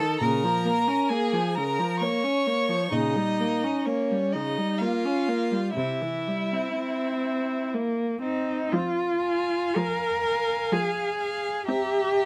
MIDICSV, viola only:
0, 0, Header, 1, 2, 480
1, 0, Start_track
1, 0, Key_signature, -4, "minor"
1, 0, Tempo, 900901
1, 116, Time_signature, 3, 2, 24, 8
1, 1557, Tempo, 940439
1, 2517, Tempo, 977199
1, 3957, Tempo, 1015228
1, 4917, Tempo, 960000
1, 6161, End_track
2, 0, Start_track
2, 0, Title_t, "Viola"
2, 0, Program_c, 0, 41
2, 0, Note_on_c, 0, 51, 43
2, 115, Note_off_c, 0, 51, 0
2, 118, Note_on_c, 0, 49, 50
2, 234, Note_on_c, 0, 53, 43
2, 242, Note_off_c, 0, 49, 0
2, 348, Note_on_c, 0, 58, 45
2, 356, Note_off_c, 0, 53, 0
2, 467, Note_on_c, 0, 61, 43
2, 475, Note_off_c, 0, 58, 0
2, 587, Note_on_c, 0, 58, 46
2, 594, Note_off_c, 0, 61, 0
2, 709, Note_on_c, 0, 53, 45
2, 717, Note_off_c, 0, 58, 0
2, 838, Note_on_c, 0, 49, 44
2, 846, Note_off_c, 0, 53, 0
2, 954, Note_on_c, 0, 53, 39
2, 962, Note_off_c, 0, 49, 0
2, 1072, Note_on_c, 0, 58, 46
2, 1080, Note_off_c, 0, 53, 0
2, 1194, Note_on_c, 0, 61, 43
2, 1202, Note_off_c, 0, 58, 0
2, 1315, Note_on_c, 0, 58, 43
2, 1323, Note_off_c, 0, 61, 0
2, 1434, Note_on_c, 0, 53, 40
2, 1442, Note_off_c, 0, 58, 0
2, 1555, Note_off_c, 0, 53, 0
2, 1558, Note_on_c, 0, 49, 47
2, 1679, Note_on_c, 0, 55, 40
2, 1687, Note_off_c, 0, 49, 0
2, 1800, Note_on_c, 0, 58, 39
2, 1808, Note_off_c, 0, 55, 0
2, 1921, Note_on_c, 0, 61, 36
2, 1928, Note_off_c, 0, 58, 0
2, 2037, Note_on_c, 0, 58, 41
2, 2044, Note_off_c, 0, 61, 0
2, 2163, Note_on_c, 0, 55, 41
2, 2170, Note_off_c, 0, 58, 0
2, 2285, Note_on_c, 0, 49, 40
2, 2293, Note_off_c, 0, 55, 0
2, 2403, Note_on_c, 0, 55, 38
2, 2411, Note_off_c, 0, 49, 0
2, 2519, Note_on_c, 0, 58, 39
2, 2527, Note_off_c, 0, 55, 0
2, 2637, Note_on_c, 0, 61, 34
2, 2645, Note_off_c, 0, 58, 0
2, 2753, Note_on_c, 0, 58, 38
2, 2760, Note_off_c, 0, 61, 0
2, 2867, Note_on_c, 0, 55, 36
2, 2874, Note_off_c, 0, 58, 0
2, 2984, Note_off_c, 0, 55, 0
2, 2987, Note_on_c, 0, 48, 39
2, 3113, Note_on_c, 0, 52, 34
2, 3120, Note_off_c, 0, 48, 0
2, 3238, Note_on_c, 0, 55, 35
2, 3246, Note_off_c, 0, 52, 0
2, 3361, Note_on_c, 0, 60, 33
2, 3368, Note_off_c, 0, 55, 0
2, 3475, Note_off_c, 0, 60, 0
2, 3478, Note_on_c, 0, 60, 47
2, 3959, Note_on_c, 0, 58, 43
2, 3966, Note_off_c, 0, 60, 0
2, 4179, Note_off_c, 0, 58, 0
2, 4182, Note_on_c, 0, 60, 40
2, 4417, Note_off_c, 0, 60, 0
2, 4427, Note_on_c, 0, 53, 61
2, 4849, Note_off_c, 0, 53, 0
2, 4915, Note_on_c, 0, 53, 53
2, 5327, Note_off_c, 0, 53, 0
2, 5395, Note_on_c, 0, 53, 55
2, 5805, Note_off_c, 0, 53, 0
2, 5875, Note_on_c, 0, 60, 53
2, 6161, Note_off_c, 0, 60, 0
2, 6161, End_track
0, 0, End_of_file